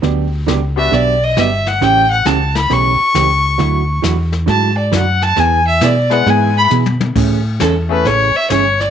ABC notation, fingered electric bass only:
X:1
M:4/4
L:1/8
Q:"Swing" 1/4=135
K:A
V:1 name="Fingered electric bass" clef=bass
D,,2 C,,2 B,,,2 =G,,,2 | A,,,2 C,,2 B,,, z C,,2 | D,,2 E,,2 G,,2 F,,2 | E,,2 B,,2 G,,2 B,,2 |
A,,2 E,,2 A,,, z =G,,,2 |]